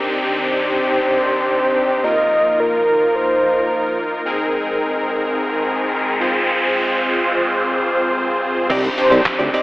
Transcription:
0.00 2.01 D#3 medium
0.00 1.99 C4 medium
0.00 2.01 C4 medium
0.00 2.00 D4 medium
0.00 2.00 D#4 medium
0.00 2.00 G4 medium
0.00 2.01 G4 medium
0.00 2.01 D5 medium
0.00 downlifter medium
0.37 2.05 C5 loud
2.03 4.24 F3 medium
2.03 4.22 A#3 medium
2.03 4.24 A#3 medium
2.03 4.22 D#4 medium
2.03 6.16 D#4 medium
2.03 4.22 F4 medium
2.03 6.16 A#4 medium
2.03 4.22 A#4 medium
2.03 2.61 D#5 loud
2.60 3.17 A#4 loud
3.15 3.98 C5 medium
4.25 8.66 G#3 medium
4.25 6.16 C4 medium
4.25 8.66 C4 medium
4.25 6.16 D#4 medium
4.25 6.17 G#4 medium
4.25 6.17 A#4 medium
4.25 noise sweep medium
6.20 8.66 C4 medium
6.20 8.66 F4 medium
6.20 8.68 F4 medium
6.20 8.66 G#4 medium
6.20 8.68 C5 medium
6.20 8.67 C5 medium
8.70 8.89 C2 loud
8.70 9.63 D#3 medium
8.70 8.83 C4 medium
8.70 8.88 C4 loud
8.70 9.63 C4 medium
8.70 8.88 D4 medium
8.70 8.83 D#4 medium
8.70 8.88 D#4 medium
8.70 9.63 G4 loud
8.70 8.88 G4 medium
8.70 8.83 G4 medium
8.70 8.88 C5 loud
8.70 8.82 D5 loud
8.70 kick loud
8.70 closed hi-hat medium
8.70 crash loud
8.70 downlifter medium
8.70 shaker medium
8.84 muted clean electric guitar stroke soft
8.84 closed hi-hat medium
8.84 shaker medium
8.98 9.51 C4 medium
8.98 9.51 D4 medium
8.98 9.51 D#4 medium
8.98 9.51 G4 medium
8.98 9.09 C5 medium
8.98 9.52 C5 medium
8.98 muted clean electric guitar stroke soft
8.98 open hi-hat medium
8.98 shaker medium
9.11 9.21 C2 loud
9.11 9.23 C4 medium
9.11 9.22 D#4 medium
9.11 9.22 G4 medium
9.11 9.22 D5 medium
9.11 closed hi-hat medium
9.11 shaker medium
9.26 kick loud
9.26 snare medium
9.26 clap loud
9.26 closed hi-hat medium
9.26 shaker medium
9.39 9.49 D2 loud
9.39 9.50 C4 medium
9.39 9.50 D#4 medium
9.39 9.50 G4 medium
9.39 9.50 D5 medium
9.39 closed hi-hat medium
9.39 shaker medium
9.53 9.63 C4 medium
9.53 9.63 D#4 loud
9.53 9.63 G4 loud
9.53 9.63 D5 medium
9.53 9.63 D#5 medium
9.53 open hi-hat medium
9.53 shaker medium

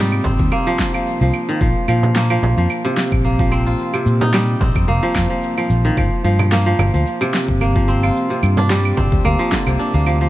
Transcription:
0.00 0.18 G#2 medium
0.00 1.52 C3 medium
0.00 1.52 G3 loud
0.00 0.51 A#3 medium
0.00 0.24 C4 medium
0.00 10.29 D4 medium
0.00 1.47 D#4 medium
0.00 0.81 F4 medium
0.12 claves medium
0.24 0.35 G#1 medium
0.24 2.05 C4 medium
0.24 kick loud
0.24 frame drum medium
0.24 cabasa medium
0.39 0.48 D#2 medium
0.39 kick loud
0.39 cabasa soft
0.52 2.15 A#3 loud
0.52 cabasa soft
0.52 claves medium
0.67 0.93 F3 loud
0.67 cabasa soft
0.79 kick medium
0.79 snare medium
0.79 cabasa medium
0.94 1.20 F3 medium
0.94 cabasa soft
0.94 claves medium
1.07 cabasa soft
1.21 1.30 C2 medium
1.21 1.52 F3 medium
1.21 cabasa soft
1.34 cabasa medium
1.34 claves medium
1.49 1.66 D#3 loud
1.49 cabasa soft
1.61 1.71 A#1 medium
1.61 1.87 F3 medium
1.61 kick loud
1.61 cabasa soft
1.88 2.37 A#2 medium
1.88 2.29 F3 medium
1.88 cabasa medium
1.88 claves medium
2.03 frame drum medium
2.03 cabasa soft
2.16 3.24 A#3 medium
2.16 snare medium
2.16 cabasa soft
2.30 2.56 F3 medium
2.30 claves medium
2.43 2.53 A#1 medium
2.43 frame drum medium
2.43 cabasa medium
2.57 2.66 F2 medium
2.57 2.89 F3 medium
2.57 cabasa soft
2.70 cabasa soft
2.70 claves medium
2.85 3.92 C3 loud
2.85 cabasa soft
2.97 snare medium
2.97 cabasa medium
3.12 3.73 A#1 medium
3.12 kick medium
3.12 cabasa soft
3.12 claves medium
3.25 4.88 A#3 medium
3.25 cabasa soft
3.39 3.98 F3 medium
3.39 kick loud
3.39 cabasa soft
3.51 4.60 C4 loud
3.51 cabasa medium
3.51 claves medium
3.66 5.18 F4 medium
3.66 cabasa soft
3.79 cabasa soft
3.94 5.89 C3 medium
3.94 cabasa soft
3.94 claves medium
4.06 4.55 A#2 medium
4.06 cabasa medium
4.21 5.83 D#4 loud
4.21 frame drum medium
4.21 cabasa soft
4.34 5.89 G3 medium
4.34 snare medium
4.34 cabasa soft
4.34 claves medium
4.61 4.71 A#1 medium
4.61 6.41 C4 medium
4.61 kick loud
4.61 frame drum medium
4.61 cabasa medium
4.76 4.84 F2 medium
4.76 kick loud
4.76 cabasa soft
4.76 claves medium
4.88 4.98 F1 medium
4.88 6.51 A#3 loud
4.88 cabasa soft
5.03 5.29 F3 loud
5.03 cabasa soft
5.15 5.26 F2 medium
5.15 kick medium
5.15 snare medium
5.15 cabasa medium
5.15 claves medium
5.30 5.56 F3 medium
5.30 cabasa soft
5.43 cabasa soft
5.58 5.89 F3 medium
5.58 cabasa soft
5.58 claves medium
5.70 5.90 A#1 medium
5.70 cabasa medium
5.85 6.02 D#3 loud
5.85 cabasa soft
5.97 6.08 G1 loud
5.97 6.23 F3 medium
5.97 kick loud
5.97 cabasa soft
5.97 claves medium
6.24 6.73 G2 medium
6.24 6.65 F3 medium
6.24 cabasa medium
6.39 frame drum medium
6.39 cabasa soft
6.39 claves medium
6.52 7.61 A#3 medium
6.52 snare medium
6.52 cabasa soft
6.66 6.93 F3 loud
6.79 6.89 G1 medium
6.79 frame drum medium
6.79 cabasa medium
6.79 claves medium
6.94 7.03 D2 medium
6.94 7.25 F3 medium
6.94 cabasa soft
7.07 cabasa soft
7.21 8.29 C3 loud
7.21 cabasa soft
7.21 claves medium
7.34 snare medium
7.34 cabasa medium
7.49 8.09 G1 medium
7.49 kick medium
7.49 cabasa soft
7.61 9.24 A#3 medium
7.61 cabasa soft
7.61 claves medium
7.76 8.34 F3 medium
7.76 kick medium
7.76 cabasa soft
7.88 8.97 C4 loud
7.88 cabasa medium
8.03 9.54 F4 medium
8.03 cabasa soft
8.03 claves medium
8.16 cabasa soft
8.30 9.57 C3 medium
8.30 cabasa soft
8.43 8.91 G2 medium
8.43 cabasa medium
8.43 claves medium
8.57 9.79 D4 loud
8.57 frame drum medium
8.57 cabasa soft
8.70 9.57 G3 loud
8.70 snare medium
8.70 cabasa soft
8.85 cabasa soft
8.85 claves medium
8.97 9.08 G1 medium
8.97 10.29 C4 loud
8.97 kick loud
8.97 frame drum medium
8.97 cabasa medium
9.12 9.21 D2 medium
9.12 kick loud
9.12 cabasa soft
9.25 9.35 D2 medium
9.25 9.93 A#3 loud
9.25 cabasa soft
9.25 claves medium
9.39 9.57 F3 loud
9.39 cabasa soft
9.52 9.70 D3 medium
9.52 kick medium
9.52 snare medium
9.52 cabasa medium
9.67 9.75 C2 medium
9.67 10.29 C3 medium
9.67 cabasa soft
9.67 claves medium
9.79 10.29 D4 medium
9.79 cabasa soft
9.94 10.28 D2 loud
9.94 10.29 A#3 medium
9.94 cabasa soft
10.06 10.20 F3 medium
10.06 cabasa medium
10.06 claves medium
10.21 10.29 F3 medium
10.21 cabasa soft

